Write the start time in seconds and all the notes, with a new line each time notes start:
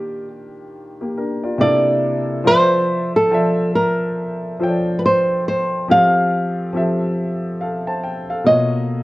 Already playing: D#3 A#3 D4 F4 G4
1.01 A#3 G4
1.17 D4 A#4
1.44 F4 D5
1.58 C3 A#3 D4 E4 D5
1.62 A4
2.44 F3 F4 A4 C5 D5
2.48 E5
3.16 A4
3.30 F3 F4 C5 D5 A5
3.34 E5
3.75 A#4
4.59 F3 F4 A4 C5 C#5
4.63 G5
4.69 D5
4.99 B4
5.05 C5
5.48 C5
5.88 F3 C4 G4 A4 F5
5.92 F5
6.73 F3 C4 G4 A4
6.77 E5
7.61 A4 F5
7.87 C5 A5
8.04 G5
8.30 A4 F5
8.44 B2 A#3 F4 C#5 D#5
8.48 D#5